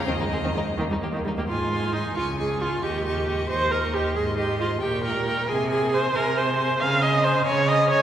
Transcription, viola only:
0.08 0.13 D#3 medium
0.21 0.26 G#3 soft
0.33 0.37 C4 medium
0.44 0.48 D#3 medium
0.55 0.59 G#3 soft
0.78 0.83 D#3 medium
0.91 0.95 G3 soft
1.01 1.06 A#3 soft
1.13 1.18 D#3 medium
1.24 1.29 G3 medium
1.38 1.42 A#3 medium
1.48 1.94 F4 medium
1.92 2.15 D#4 soft
2.16 2.24 F4 medium
2.37 2.63 G#4 medium
2.61 2.84 F4 medium
2.83 3.05 G4 medium
3.05 3.49 G4 medium
3.50 3.73 C5 medium
3.71 3.95 A#4 medium
3.94 4.15 G4 medium
4.15 4.23 G#4 medium
4.38 4.59 G4 medium
4.60 4.68 F4 medium
4.82 5.03 G4 medium
5.04 5.51 A#4 medium
5.49 5.70 G#4 medium
5.71 5.95 G#4 medium
5.94 6.17 C5 medium
6.16 6.38 A#4 medium
6.37 6.82 C5 medium
6.80 7.03 F5 medium
7.01 7.25 D#5 medium
7.24 7.45 C5 medium
7.47 7.70 C#5 medium
7.68 7.90 D#5 medium
7.91 8.02 C#5 medium

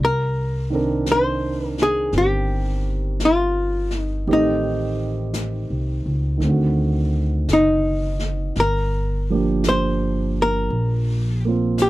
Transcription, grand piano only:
0.70 4.26 D#3 soft
0.70 2.12 C4 soft
0.70 4.29 D4 soft
0.75 4.29 A#4 medium
2.13 4.27 C4 soft
2.13 4.27 G4 soft
4.28 6.36 D#3 soft
4.28 6.42 A3 soft
4.28 6.40 C4 soft
4.28 6.42 G4 medium
6.38 8.54 D#3 soft
6.38 8.56 C4 soft
6.45 8.58 D3 soft
6.45 8.60 F#4 soft
9.30 11.90 F3 soft
9.30 11.44 A#3 soft
9.30 11.90 D4 soft
9.30 11.90 G4 soft
11.45 11.90 A#3 soft
11.45 11.90 C4 soft
11.45 11.90 F4 soft

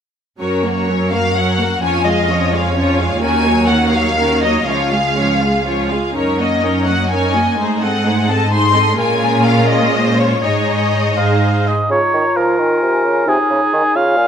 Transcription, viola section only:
0.40 0.63 F#3 soft
0.40 0.63 C#4 soft
0.63 0.89 A#3 soft
0.88 1.12 F#3 soft
0.88 1.12 C#4 soft
1.11 1.35 A#3 soft
1.35 1.57 F#3 soft
1.35 1.57 C#4 soft
1.58 1.82 A#3 soft
1.81 2.04 F3 soft
1.81 2.04 C#4 soft
2.05 2.29 G#3 soft
2.05 2.29 F4 soft
2.29 2.52 F3 soft
2.29 2.52 C#4 soft
2.52 2.76 G#3 soft
2.52 2.76 F4 soft
2.75 2.97 F3 soft
2.75 2.97 C#4 soft
2.99 3.22 G#3 soft
2.99 3.22 F4 soft
3.22 3.44 D#3 soft
3.22 3.44 C#4 soft
3.46 3.70 F#3 soft
3.46 3.70 A#3 soft
3.69 3.93 D#3 soft
3.69 3.93 C#4 soft
3.93 4.18 F#3 soft
3.93 4.18 A#3 soft
4.17 4.41 D#3 soft
4.17 4.41 C#4 soft
4.43 4.68 F#3 soft
4.43 4.68 A#3 soft
4.67 4.90 F3 soft
4.67 4.91 C#4 soft
4.92 5.17 G#3 soft
4.92 5.17 F4 soft
5.16 5.41 F3 soft
5.16 5.41 C#4 soft
5.41 5.66 G#3 soft
5.41 5.66 F4 soft
5.66 5.89 F3 soft
5.66 5.89 C#4 soft
5.91 6.15 G#3 soft
5.91 6.15 F4 soft
6.14 6.37 C#4 soft
6.14 6.37 D#4 soft
6.38 6.63 A#3 soft
6.38 6.61 C#4 soft
6.62 6.85 C#4 soft
6.62 6.87 D#4 soft
6.86 7.11 A#3 soft
6.86 7.09 C#4 soft
7.10 7.33 C#4 soft
7.10 7.32 D#4 soft
7.34 7.58 A#3 soft
7.34 7.58 C#4 soft
7.58 7.80 A3 soft
7.58 7.80 D#4 soft
7.82 8.06 G#3 soft
7.82 8.06 C4 soft
8.05 8.28 A3 soft
8.05 8.29 D#4 soft
8.28 8.52 G#3 soft
8.28 8.52 C4 soft
8.51 8.73 A3 soft
8.51 8.73 D#4 soft
8.74 8.96 G#3 soft
8.74 8.98 C4 soft
8.97 10.38 G#3 soft
8.97 10.38 C#4 soft
10.44 11.16 G#3 soft
10.44 11.16 D#4 soft
11.17 11.69 G#3 soft
11.17 11.69 D#4 soft

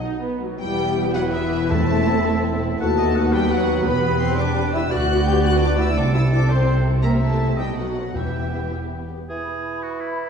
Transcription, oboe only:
1.14 1.73 B4 medium
1.71 2.79 E5 medium
2.81 2.88 F#5 medium
2.98 3.17 D#5 medium
3.16 3.35 F#5 medium
3.33 4.93 B4 medium
4.91 5.96 D5 medium
5.96 6.51 A4 medium
6.49 6.87 C5 medium
7.03 7.59 E5 medium
7.57 7.95 D#5 medium
8.15 8.98 G5 medium
9.30 9.84 G#4 medium
9.83 10.02 F#4 medium
10.00 10.29 E4 soft

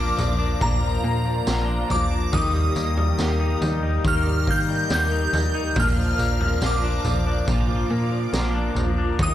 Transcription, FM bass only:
0.00 0.14 A#1 loud
0.19 0.56 A#1 loud
0.61 0.99 A#1 loud
1.04 1.42 A#2 loud
1.47 1.85 A#1 medium
1.90 2.28 A#1 medium
2.33 2.71 D#2 loud
2.76 3.14 D#2 loud
3.19 3.57 D#2 medium
3.62 3.99 D#2 loud
4.05 4.49 D#2 loud
4.48 4.85 D#3 loud
4.91 5.28 D#2 loud
5.33 5.71 D#2 loud
5.76 6.14 A#1 loud
6.19 6.56 A#1 loud
6.62 6.99 A#1 loud
7.05 7.42 A#1 loud
7.48 7.85 A#1 loud
7.90 8.28 A#2 loud
8.33 8.71 A#1 medium
8.75 9.13 A#1 medium
9.19 9.34 D#2 loud

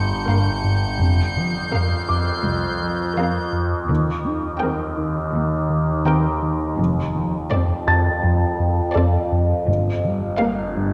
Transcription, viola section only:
0.29 0.82 A#3 soft
0.29 0.82 A#4 soft
1.74 2.27 C4 soft
1.74 2.27 A#4 soft
3.19 3.72 C4 soft
3.19 3.72 A#4 soft
4.63 5.16 C4 soft
4.63 5.16 A#4 soft
6.07 6.60 C4 soft
6.07 6.60 A#4 soft
7.53 8.06 A3 soft
7.53 8.06 C4 soft
8.96 9.50 C4 soft
8.96 9.49 A4 soft
10.41 10.93 A#3 soft
10.41 10.93 A#4 soft

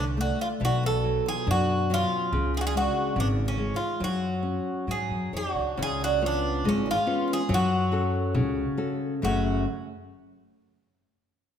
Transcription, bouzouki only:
0.21 0.41 F#4 medium
0.41 0.47 F4 medium
0.65 0.83 F#4 loud
0.86 1.28 A4 loud
1.28 1.49 G#4 loud
1.51 1.93 F#4 loud
1.94 2.51 F4 loud
2.57 2.65 F#4 medium
2.57 2.61 G#4 medium
2.67 2.76 G#4 loud
2.77 3.19 F#4 medium
3.20 3.27 D4 medium
3.48 3.75 C#4 medium
3.76 4.03 F4 medium
4.04 5.31 F#4 medium
4.91 5.31 G#4 medium
5.37 5.81 F#4 medium
5.83 6.03 G#4 loud
6.04 6.24 F#4 medium
6.26 6.68 D4 medium
6.69 6.88 C#4 medium
6.91 7.32 F4 medium
7.33 7.52 G#4 loud
7.54 8.77 F#4 medium
9.25 9.65 F#4 medium

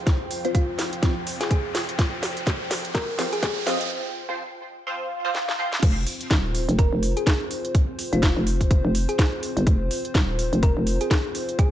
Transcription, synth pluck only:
0.45 0.51 F4 medium
0.55 0.64 F4 medium
1.41 1.47 G#4 medium
1.51 1.60 G#4 medium
2.95 3.10 A#4 medium
3.33 3.39 G#4 medium
3.43 3.52 G#4 medium
6.79 6.94 A#4 medium
7.17 7.23 G#4 medium
7.27 7.36 G#4 medium
8.13 8.19 F4 medium
8.23 8.32 F4 medium
9.09 9.15 G#4 medium
9.19 9.28 G#4 medium
10.63 10.79 A#4 medium
11.01 11.07 G#4 loud
11.11 11.20 G#4 medium
11.59 11.71 G#4 medium

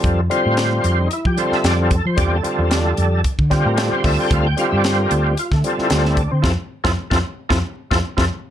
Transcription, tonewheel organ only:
0.00 0.20 D3 medium
0.00 0.21 G3 medium
0.00 0.21 C4 medium
0.00 0.21 F4 medium
0.00 0.21 A4 medium
0.30 1.08 D3 medium
0.30 1.08 G3 medium
0.30 1.08 C4 medium
0.30 0.84 F4 medium
0.30 1.09 C5 medium
0.85 0.98 F4 medium
1.01 1.12 D#4 medium
1.13 1.26 E4 medium
1.27 1.38 G4 medium
1.37 1.96 D3 medium
1.37 1.96 G3 medium
1.37 1.96 C4 medium
1.37 1.80 F4 medium
1.37 1.91 A4 medium
1.37 1.52 C5 medium
1.55 1.65 E5 medium
1.67 1.80 D5 medium
1.81 1.92 F4 medium
1.92 2.05 A4 medium
2.07 2.18 C5 medium
2.16 2.37 D3 medium
2.16 2.37 G3 medium
2.16 2.37 C4 medium
2.16 2.38 F4 medium
2.16 2.38 G4 medium
2.16 2.32 D5 medium
2.33 2.43 A4 medium
2.43 3.21 D3 medium
2.43 3.21 G3 medium
2.43 2.60 C4 medium
2.43 2.86 F4 medium
2.43 3.22 A4 medium
2.61 2.72 C4 medium
2.74 2.86 D4 medium
2.87 2.94 F4 medium
3.50 4.02 D3 medium
3.50 4.03 G3 medium
3.50 4.03 C4 medium
3.50 4.03 F4 medium
3.50 4.05 G4 medium
3.67 3.78 A#4 medium
3.79 3.92 A4 medium
3.93 4.04 C5 medium
4.03 4.47 D3 medium
4.03 4.47 G3 medium
4.03 4.48 C4 medium
4.03 4.48 F4 medium
4.03 4.48 A4 medium
4.03 4.18 E5 loud
4.20 4.31 G5 loud
4.32 4.45 F5 medium
4.47 4.58 G5 loud
4.57 5.35 D3 medium
4.57 5.35 G3 medium
4.57 5.35 C4 medium
4.57 5.35 F4 medium
4.57 5.25 G4 medium
4.57 4.67 F5 loud
4.69 4.76 E5 medium
4.77 4.85 D5 loud
4.86 4.99 C5 medium
5.00 5.11 A#4 medium
5.12 5.25 A4 medium
5.26 5.37 G4 medium
5.39 5.52 F4 medium
5.53 5.64 A3 medium
5.64 6.22 D3 medium
5.64 6.22 G3 medium
5.64 6.22 C4 medium
5.64 5.90 F4 medium
5.64 6.23 A4 medium
5.79 5.91 E4 medium
5.91 6.05 F4 medium
6.07 6.18 E4 medium
6.17 6.31 D4 medium
6.31 6.43 C4 medium
6.42 6.53 C4 medium
6.42 6.52 E4 medium
6.42 6.52 F4 medium
6.42 6.52 A4 medium
6.84 6.92 C4 loud
6.84 6.92 E4 loud
6.84 6.92 F4 loud
6.84 6.92 A4 loud
7.10 7.19 C4 medium
7.10 7.19 E4 medium
7.10 7.19 F4 medium
7.10 7.19 A4 loud
7.49 7.59 C4 loud
7.49 7.59 E4 medium
7.49 7.59 F4 loud
7.49 7.59 A4 loud
7.91 7.99 C4 loud
7.91 7.99 E4 medium
7.91 7.99 F4 loud
7.91 7.99 A4 medium
8.17 8.25 C4 loud
8.17 8.25 E4 loud
8.17 8.25 F4 medium
8.17 8.26 A4 medium

